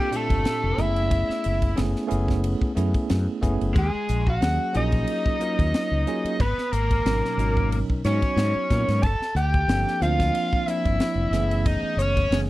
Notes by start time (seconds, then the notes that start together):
Already playing: G4
0.11 A#2 A3 C4 D4 F4 G4, hi-hat pedal, ride
0.16 A4
0.29 G1, kick, ride
0.45 snare, ride
0.64 F1
0.77 F#1 A3 B3 C#4 E4 G#4 E5, hi-hat pedal, ride
0.96 ride
1.11 kick, ride
1.29 muted fretless electric bass stroke, snare
1.44 F#1, hi-hat pedal, ride
1.62 kick, ride
1.75 F#1 A3 B3 C#4 E4 G#4, snare, ride
1.96 snare
2.07 A3 B3 C#4 E4 G#4, hi-hat pedal, ride
2.12 F#1
2.28 kick, snare
2.44 ride
2.61 muted fretless electric bass stroke, kick
2.75 F#2 A3 B3 C#4 E4 G#4, hi-hat pedal, ride
2.94 kick, ride
3.10 F#2, snare, ride
3.28 muted fretless electric bass stroke
3.41 F#1 A3 B3 C#4 E4 G#4, kick, hi-hat pedal, ride
3.61 F#1, ride
3.75 D#2 G#3 G#4, kick, ride
3.95 muted fretless electric bass stroke
4.09 A#1, hi-hat pedal, ride
4.27 F#4 F#5, kick
4.40 D#2 F#3 A#3 C#4 F#4 G#4, snare, ride
4.73 A#1 F#3 A#3 C#4 D#4 F4 G#4 D#5, hi-hat pedal, ride
4.92 kick, ride
5.07 ride
5.26 kick
5.40 F#3 A#3 C#4 F4 A#4, hi-hat pedal, ride
5.59 D#2, kick, ride
5.74 snare, ride
5.91 C#2
6.07 F#3 A#3 C#4 F4 G#4, hi-hat pedal, ride
6.24 muted fretless electric bass stroke, ride
6.40 G#1 B3 B4, kick, ride
6.57 muted fretless electric bass stroke, snare
6.72 G#1 A#3 A#4, hi-hat pedal, ride
6.91 kick, ride
7.05 G#1 B2 F#3 C#4 D#4 A#4, snare, ride
7.25 snare
7.37 G#1 B2 F#3 C#4 D#4 A#4, hi-hat pedal, ride
7.57 kick
7.72 ride
7.89 muted fretless electric bass stroke, kick
8.04 G#2 F#3 B3 C#4 D#4 F#4 C#5, snare, hi-hat pedal, ride
8.22 kick, ride
8.36 G#2, snare, ride
8.55 muted fretless electric bass stroke
8.70 A#2 F#3 B3 C#4 D#4 A#4, kick, snare, hi-hat pedal, ride
8.88 G#2, snare, ride
9.03 G1 A4 A5, kick, ride
9.20 muted fretless electric bass stroke, snare
9.35 D2 G4 G5, hi-hat pedal, ride
9.54 kick
9.68 G1 F3 A#3 C4 D4 A4, snare, ride
9.88 snare
10.00 D2 F3 A#3 C4 D4 F4 F5, hi-hat pedal, ride
10.05 F4
10.20 kick, snare, ride
10.35 ride
10.53 kick
10.66 F3 A#3 C4 D4 E4 E5, hi-hat pedal, ride
10.85 G1, kick, ride
11.00 snare, ride
11.15 F1
11.31 F#1 E3 A3 B3 C#4 G#4, snare, hi-hat pedal, ride
11.51 ride
11.66 D#4 D#5, kick, ride
11.83 muted fretless electric bass stroke
11.97 F#1 C#5, hi-hat pedal, ride
12.02 C#4
12.17 kick, ride
12.31 F#1 E3 A3 B3 C#4 G#4, snare, ride